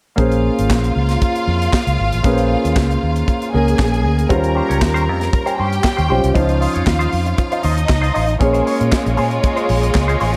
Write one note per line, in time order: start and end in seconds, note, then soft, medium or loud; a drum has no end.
0.16 0.48 A#1 medium
0.16 2.19 A#3 medium
0.16 2.20 C#4 soft
0.16 3.49 F4 medium
0.16 2.20 G#4 medium
0.16 2.21 C5 medium
0.16 3.49 F5 medium
0.16 kick medium
0.16 closed hi-hat medium
0.32 closed hi-hat soft
0.59 0.68 G#1 medium
0.59 closed hi-hat soft
0.70 0.90 A#1 medium
0.70 kick medium
0.70 snare loud
0.70 clap medium
0.84 closed hi-hat soft
0.96 1.15 C#2 medium
1.09 snare soft
1.09 closed hi-hat soft
1.22 kick medium
1.22 closed hi-hat medium
1.36 closed hi-hat soft
1.48 1.67 F2 medium
1.62 closed hi-hat soft
1.73 kick loud
1.73 snare loud
1.73 clap medium
1.87 1.96 C#2 medium
1.87 closed hi-hat soft
1.99 2.09 G#1 medium
2.12 2.22 A1 medium
2.12 closed hi-hat soft
2.23 2.55 A#1 medium
2.23 3.50 A#3 medium
2.23 3.50 C#4 medium
2.23 3.51 G#4 medium
2.23 2.32 B4 medium
2.23 kick loud
2.23 closed hi-hat medium
2.33 3.54 C5 medium
2.38 closed hi-hat soft
2.65 2.74 D#2 medium
2.65 closed hi-hat soft
2.76 2.96 C#2 medium
2.76 kick medium
2.76 snare loud
2.76 clap medium
2.91 closed hi-hat soft
3.03 3.22 D#2 medium
3.16 closed hi-hat soft
3.28 kick medium
3.28 closed hi-hat soft
3.42 closed hi-hat soft
3.53 3.73 C#2 medium
3.53 4.30 A#3 medium
3.53 4.29 C#4 soft
3.53 4.28 G#4 medium
3.53 4.31 G#4 soft
3.53 4.31 A#4 medium
3.53 4.28 G#5 medium
3.68 closed hi-hat soft
3.79 4.06 A#1 loud
3.79 kick loud
3.79 snare loud
3.79 clap medium
3.94 closed hi-hat soft
4.06 4.25 D2 medium
4.19 closed hi-hat soft
4.29 4.60 D#2 medium
4.29 6.06 G3 medium
4.29 4.50 C#4 medium
4.29 6.06 C#4 medium
4.29 6.07 F4 medium
4.29 4.43 G4 medium
4.29 5.56 A#4 medium
4.29 4.43 C5 medium
4.29 6.07 C5 medium
4.29 5.56 A#5 medium
4.29 kick loud
4.29 closed hi-hat medium
4.44 muted clean electric guitar stroke medium
4.44 closed hi-hat soft
4.55 4.69 C#4 medium
4.55 4.69 G4 medium
4.55 4.69 C5 medium
4.69 4.79 C#2 medium
4.69 4.80 C#4 soft
4.69 4.81 G4 soft
4.69 4.82 C#5 medium
4.69 closed hi-hat medium
4.82 5.09 D#2 medium
4.82 kick medium
4.82 snare loud
4.82 clap medium
4.94 5.05 C#4 medium
4.94 5.06 G4 medium
4.94 5.06 C5 medium
4.94 closed hi-hat soft
5.06 5.28 F2 medium
5.06 muted clean electric guitar stroke soft
5.20 muted clean electric guitar stroke soft
5.20 snare soft
5.20 closed hi-hat soft
5.33 muted clean electric guitar stroke soft
5.33 kick loud
5.33 closed hi-hat medium
5.46 5.57 C#4 medium
5.46 5.57 G4 medium
5.46 5.58 C5 medium
5.46 closed hi-hat soft
5.58 5.79 G2 medium
5.58 5.75 C#4 medium
5.58 5.71 G4 medium
5.58 6.34 G4 medium
5.58 5.70 C5 medium
5.58 6.34 G5 loud
5.72 muted clean electric guitar stroke soft
5.72 closed hi-hat soft
5.83 muted clean electric guitar stroke soft
5.83 kick loud
5.83 snare loud
5.83 clap medium
5.97 6.07 D#2 medium
5.97 6.07 C#4 soft
5.97 6.08 G4 medium
5.97 6.09 C5 medium
5.97 closed hi-hat soft
6.08 6.21 B1 medium
6.08 6.35 G3 soft
6.08 6.30 C#4 medium
6.08 6.34 C#4 soft
6.08 6.36 F4 soft
6.08 6.23 G4 medium
6.08 6.22 C5 medium
6.08 6.36 C5 soft
6.23 6.33 C2 medium
6.23 muted clean electric guitar stroke soft
6.23 closed hi-hat soft
6.34 6.66 C#2 medium
6.34 8.36 F3 medium
6.34 8.37 C#4 medium
6.34 6.56 D#4 medium
6.34 8.37 D#4 medium
6.34 6.48 F4 medium
6.34 7.61 F4 medium
6.34 6.47 C5 medium
6.34 8.38 C5 medium
6.34 7.61 F5 medium
6.34 kick medium
6.34 closed hi-hat medium
6.48 muted clean electric guitar stroke soft
6.48 closed hi-hat soft
6.60 6.75 D#4 medium
6.60 6.74 F4 medium
6.60 6.74 C5 medium
6.60 open hi-hat medium
6.74 6.85 F2 medium
6.74 6.85 D#4 medium
6.74 6.86 F4 medium
6.74 6.87 C#5 medium
6.74 closed hi-hat soft
6.87 7.06 D#2 medium
6.87 muted clean electric guitar stroke soft
6.87 kick loud
6.87 snare loud
6.87 clap medium
6.99 7.11 D#4 medium
6.99 7.11 F4 medium
6.99 7.12 C5 medium
6.99 closed hi-hat soft
7.12 7.32 F2 medium
7.12 open hi-hat medium
7.26 muted clean electric guitar stroke medium
7.26 closed hi-hat soft
7.38 muted clean electric guitar stroke soft
7.38 kick medium
7.38 closed hi-hat medium
7.52 7.62 D#4 medium
7.52 7.63 F4 medium
7.52 7.64 C5 medium
7.52 closed hi-hat soft
7.63 7.84 D#2 medium
7.63 7.80 D#4 medium
7.63 8.39 D#4 medium
7.63 7.77 F4 medium
7.63 7.75 C5 medium
7.63 8.39 D#5 medium
7.63 open hi-hat medium
7.77 muted clean electric guitar stroke soft
7.77 closed hi-hat soft
7.88 8.09 C#2 loud
7.88 muted clean electric guitar stroke soft
7.88 kick loud
7.88 snare loud
7.88 clap medium
8.02 8.13 D#4 soft
8.02 8.14 F4 medium
8.02 8.15 C5 medium
8.02 closed hi-hat soft
8.14 8.35 A1 medium
8.14 8.36 D#4 medium
8.14 8.28 F4 medium
8.14 8.27 C5 medium
8.14 open hi-hat medium
8.28 muted clean electric guitar stroke soft
8.28 closed hi-hat soft
8.39 8.60 A#1 medium
8.39 10.37 G#3 medium
8.39 10.37 A#3 medium
8.39 10.37 C#4 medium
8.39 10.37 F4 medium
8.39 10.37 G#4 medium
8.39 10.37 C#5 medium
8.39 muted clean electric guitar stroke soft
8.39 kick loud
8.39 closed hi-hat medium
8.53 8.64 C#4 medium
8.53 8.65 G#4 medium
8.53 8.67 C5 medium
8.53 closed hi-hat soft
8.66 8.83 C#4 medium
8.66 8.79 G#4 medium
8.66 8.79 C#5 medium
8.66 open hi-hat medium
8.79 8.90 A#2 medium
8.79 muted clean electric guitar stroke soft
8.79 closed hi-hat medium
8.91 muted clean electric guitar stroke soft
8.91 kick loud
8.91 snare loud
8.91 clap medium
9.05 9.15 A#1 medium
9.05 muted clean electric guitar stroke soft
9.05 closed hi-hat soft
9.17 9.38 A#2 medium
9.17 9.38 C#4 medium
9.17 9.31 G#4 medium
9.17 9.30 C5 medium
9.17 open hi-hat soft
9.31 muted clean electric guitar stroke soft
9.31 closed hi-hat soft
9.43 muted clean electric guitar stroke soft
9.43 kick loud
9.43 closed hi-hat medium
9.56 9.67 C#4 medium
9.56 9.68 G#4 medium
9.56 9.68 C5 medium
9.56 closed hi-hat soft
9.68 9.89 A#1 medium
9.68 muted clean electric guitar stroke soft
9.68 open hi-hat medium
9.82 muted clean electric guitar stroke soft
9.82 closed hi-hat soft
9.94 10.15 C#2 loud
9.94 muted clean electric guitar stroke soft
9.94 kick loud
9.94 snare loud
9.94 clap medium
10.08 10.18 C#4 soft
10.08 10.19 G#4 medium
10.08 10.20 C5 medium
10.08 closed hi-hat soft
10.20 10.37 A1 medium
10.20 10.37 C#4 medium
10.20 10.33 G#4 medium
10.20 10.32 C5 medium
10.20 open hi-hat medium